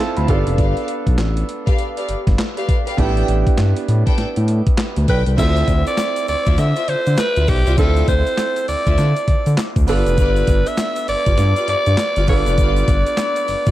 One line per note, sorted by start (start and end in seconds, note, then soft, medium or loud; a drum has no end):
0.00 0.30 C4 medium
0.00 0.28 E4 medium
0.00 0.29 F4 medium
0.00 0.30 A4 medium
0.00 0.29 E5 medium
0.00 0.29 F5 medium
0.00 0.16 A5 medium
0.17 0.27 D2 loud
0.17 0.55 B5 medium
0.17 closed hi-hat medium
0.27 0.44 G1 medium
0.27 2.64 B3 medium
0.27 2.64 D4 medium
0.27 2.65 F4 medium
0.27 0.49 G4 medium
0.27 2.65 A4 medium
0.27 0.49 B4 medium
0.27 0.49 D5 medium
0.27 0.49 F5 medium
0.27 kick medium
0.27 closed hi-hat medium
0.47 0.57 F1 medium
0.47 closed hi-hat medium
0.58 0.74 G1 loud
0.58 0.86 G4 medium
0.58 0.86 B4 medium
0.58 0.86 D5 medium
0.58 0.86 F5 loud
0.58 kick loud
0.58 closed hi-hat medium
0.77 closed hi-hat soft
0.88 closed hi-hat medium
1.07 1.16 B1 medium
1.07 kick loud
1.07 closed hi-hat medium
1.18 1.44 A1 medium
1.18 snare loud
1.18 clap medium
1.18 closed hi-hat medium
1.37 closed hi-hat medium
1.49 closed hi-hat medium
1.67 1.82 G4 medium
1.67 1.82 B4 medium
1.67 1.82 D5 medium
1.67 1.82 F5 medium
1.67 kick medium
1.67 closed hi-hat medium
1.78 closed hi-hat medium
1.97 2.12 G4 medium
1.97 2.12 B4 medium
1.97 2.12 D5 medium
1.97 2.12 F5 medium
1.97 closed hi-hat medium
2.09 2.16 G1 soft
2.09 closed hi-hat medium
2.27 2.37 G1 medium
2.27 kick medium
2.27 snare medium
2.27 closed hi-hat soft
2.39 snare loud
2.39 clap loud
2.39 closed hi-hat medium
2.56 2.72 G4 medium
2.56 2.72 B4 medium
2.56 2.72 D5 medium
2.56 2.72 F5 medium
2.56 closed hi-hat soft
2.69 kick medium
2.69 closed hi-hat medium
2.86 3.02 G4 medium
2.86 2.96 B4 medium
2.86 2.97 D5 medium
2.86 3.02 F5 medium
2.86 closed hi-hat medium
2.97 3.23 A1 loud
2.97 5.34 B3 medium
2.97 5.34 D4 medium
2.97 5.35 E4 medium
2.97 5.35 G4 medium
2.97 3.26 A4 medium
2.97 3.26 B4 medium
2.97 3.26 D5 medium
2.97 3.26 G5 loud
2.97 kick loud
2.97 closed hi-hat medium
3.17 closed hi-hat soft
3.28 3.44 A1 medium
3.28 closed hi-hat medium
3.47 kick medium
3.47 closed hi-hat medium
3.58 3.74 G2 medium
3.58 snare loud
3.58 clap medium
3.58 closed hi-hat medium
3.77 closed hi-hat medium
3.88 4.04 A2 medium
3.88 closed hi-hat medium
4.06 4.22 A4 medium
4.06 4.22 B4 medium
4.06 4.22 D5 medium
4.06 4.22 G5 medium
4.06 kick medium
4.06 closed hi-hat medium
4.18 4.26 A2 soft
4.18 snare medium
4.18 closed hi-hat medium
4.36 4.62 A2 medium
4.36 closed hi-hat medium
4.48 closed hi-hat medium
4.67 kick medium
4.67 closed hi-hat soft
4.78 snare loud
4.78 clap loud
4.78 closed hi-hat medium
4.96 5.06 D2 medium
4.96 closed hi-hat soft
5.08 5.24 B1 medium
5.08 5.29 A4 medium
5.08 5.29 B4 medium
5.08 5.23 B4 medium
5.08 5.29 D5 medium
5.08 5.29 G5 medium
5.08 kick medium
5.08 closed hi-hat medium
5.26 5.36 C2 medium
5.26 closed hi-hat medium
5.37 5.63 D2 loud
5.37 7.74 C4 medium
5.37 7.74 E4 medium
5.37 5.66 F4 loud
5.37 7.74 F4 medium
5.37 7.75 A4 medium
5.37 5.66 C5 medium
5.37 5.66 D5 medium
5.37 5.66 E5 loud
5.37 5.84 E5 loud
5.37 kick loud
5.37 closed hi-hat medium
5.37 crash medium
5.37 shaker medium
5.56 closed hi-hat soft
5.56 shaker soft
5.68 5.84 D2 loud
5.68 kick loud
5.68 closed hi-hat medium
5.68 shaker medium
5.87 6.26 D5 loud
5.87 closed hi-hat medium
5.87 shaker medium
5.97 snare loud
5.97 clap medium
5.97 closed hi-hat medium
5.97 shaker medium
6.16 closed hi-hat medium
6.16 shaker soft
6.28 6.36 D2 soft
6.28 6.61 D5 loud
6.28 open hi-hat medium
6.28 shaker soft
6.46 6.57 D2 medium
6.46 6.62 F4 medium
6.46 6.62 C5 medium
6.46 6.62 D5 medium
6.46 6.62 E5 medium
6.46 kick loud
6.46 closed hi-hat medium
6.46 shaker soft
6.58 6.74 D3 loud
6.58 6.90 E5 loud
6.58 snare medium
6.58 closed hi-hat medium
6.58 shaker medium
6.76 6.91 F4 medium
6.76 6.91 C5 medium
6.76 6.92 D5 medium
6.76 6.92 E5 medium
6.76 closed hi-hat medium
6.76 shaker soft
6.88 6.96 D3 soft
6.88 7.21 C5 medium
6.88 closed hi-hat medium
7.06 7.16 D3 medium
7.06 closed hi-hat soft
7.06 shaker medium
7.17 7.50 B4 medium
7.17 snare loud
7.17 clap loud
7.17 closed hi-hat medium
7.17 shaker medium
7.36 7.46 D2 loud
7.36 7.52 F4 medium
7.36 7.52 C5 medium
7.36 7.52 D5 medium
7.36 7.52 E5 medium
7.36 closed hi-hat soft
7.36 shaker soft
7.47 7.64 B1 loud
7.47 7.78 G4 medium
7.47 kick medium
7.47 open hi-hat medium
7.47 shaker soft
7.66 7.76 C2 medium
7.66 7.76 F4 medium
7.66 7.76 C5 medium
7.66 7.76 D5 medium
7.66 7.77 E5 medium
7.66 closed hi-hat medium
7.66 shaker medium
7.77 8.03 D2 loud
7.77 9.84 C4 medium
7.77 9.84 E4 medium
7.77 8.06 F4 loud
7.77 9.84 F4 medium
7.77 8.06 A4 loud
7.77 9.85 A4 medium
7.77 8.06 C5 medium
7.77 8.06 D5 medium
7.77 8.06 E5 loud
7.77 kick loud
7.77 closed hi-hat medium
7.77 shaker medium
7.96 closed hi-hat soft
7.96 shaker soft
8.08 8.24 D2 medium
8.08 8.64 C5 loud
8.08 kick medium
8.08 closed hi-hat medium
8.08 shaker soft
8.27 closed hi-hat medium
8.27 shaker soft
8.38 snare loud
8.38 clap medium
8.38 closed hi-hat medium
8.38 shaker medium
8.56 closed hi-hat medium
8.56 shaker soft
8.68 8.76 D2 soft
8.68 9.54 D5 medium
8.68 open hi-hat medium
8.68 shaker soft
8.86 8.96 D2 loud
8.86 9.02 F4 medium
8.86 9.02 C5 medium
8.86 9.02 D5 medium
8.86 9.02 E5 medium
8.86 kick medium
8.86 closed hi-hat medium
8.86 shaker soft
8.98 9.14 D3 loud
8.98 snare medium
8.98 closed hi-hat medium
8.98 shaker medium
9.16 closed hi-hat medium
9.16 shaker soft
9.28 9.36 D3 soft
9.28 kick medium
9.28 closed hi-hat medium
9.46 9.56 D3 medium
9.46 closed hi-hat soft
9.46 shaker medium
9.57 snare loud
9.57 clap loud
9.57 closed hi-hat medium
9.57 shaker medium
9.76 9.86 D2 loud
9.76 kick medium
9.76 closed hi-hat medium
9.76 shaker soft
9.87 10.04 G1 loud
9.87 12.23 B3 medium
9.87 12.24 D4 medium
9.87 10.09 F4 medium
9.87 12.24 F4 medium
9.87 10.09 G4 medium
9.87 12.25 A4 medium
9.87 10.09 B4 medium
9.87 10.69 B4 medium
9.87 10.09 D5 medium
9.87 open hi-hat medium
9.87 shaker medium
10.06 10.20 F1 loud
10.06 closed hi-hat medium
10.06 shaker medium
10.18 10.43 G1 loud
10.18 10.46 F4 loud
10.18 10.46 G4 medium
10.18 10.46 B4 medium
10.18 10.46 D5 loud
10.18 kick loud
10.18 closed hi-hat medium
10.18 shaker medium
10.36 closed hi-hat soft
10.36 shaker soft
10.47 10.63 G1 loud
10.47 kick loud
10.47 closed hi-hat medium
10.47 shaker medium
10.66 11.09 E5 loud
10.66 closed hi-hat medium
10.66 shaker soft
10.77 snare loud
10.77 clap medium
10.77 closed hi-hat medium
10.77 shaker medium
10.96 closed hi-hat medium
10.96 shaker medium
11.08 11.16 G1 soft
11.08 11.65 D5 loud
11.08 open hi-hat medium
11.08 shaker soft
11.26 11.36 G1 medium
11.26 11.41 F4 medium
11.26 11.42 G4 medium
11.26 11.42 B4 medium
11.26 11.42 D5 medium
11.26 kick medium
11.26 closed hi-hat medium
11.26 shaker soft
11.38 11.54 G2 loud
11.38 snare medium
11.38 closed hi-hat medium
11.38 shaker medium
11.56 11.72 F4 medium
11.56 11.72 G4 medium
11.56 11.72 B4 medium
11.56 11.72 D5 medium
11.56 closed hi-hat medium
11.56 shaker soft
11.68 11.76 G2 soft
11.68 12.25 D5 loud
11.68 closed hi-hat medium
11.86 11.96 G2 medium
11.86 closed hi-hat soft
11.86 shaker medium
11.97 snare loud
11.97 clap loud
11.97 closed hi-hat medium
11.97 shaker medium
12.16 12.26 G1 loud
12.16 12.32 F4 medium
12.16 12.32 G4 medium
12.16 12.32 B4 medium
12.16 12.32 D5 medium
12.16 closed hi-hat medium
12.16 shaker soft
12.27 12.44 G1 medium
12.27 13.71 B3 medium
12.27 13.71 D4 medium
12.27 13.71 F4 medium
12.27 12.37 A4 medium
12.27 13.71 D5 loud
12.27 kick medium
12.27 open hi-hat medium
12.27 shaker medium
12.36 13.71 B4 medium
12.46 12.56 F1 medium
12.46 12.57 F4 medium
12.46 12.57 G4 medium
12.46 12.58 B4 medium
12.46 12.58 D5 medium
12.46 closed hi-hat medium
12.46 shaker medium
12.58 12.83 G1 loud
12.58 12.86 F4 medium
12.58 12.86 G4 medium
12.58 12.87 B4 medium
12.58 12.87 D5 loud
12.58 kick loud
12.58 closed hi-hat medium
12.58 shaker medium
12.76 closed hi-hat soft
12.76 shaker soft
12.88 13.04 G1 loud
12.88 kick loud
12.88 closed hi-hat medium
12.88 shaker medium
13.07 closed hi-hat medium
13.07 shaker soft
13.17 snare loud
13.17 clap medium
13.17 closed hi-hat medium
13.17 shaker medium
13.36 closed hi-hat medium
13.36 shaker soft
13.48 13.56 G1 soft
13.48 open hi-hat medium
13.48 shaker soft
13.66 13.71 G1 medium
13.66 13.71 F4 medium
13.66 13.71 G4 medium
13.66 13.71 B4 medium
13.66 13.71 D5 medium
13.66 kick medium
13.66 closed hi-hat medium
13.66 shaker soft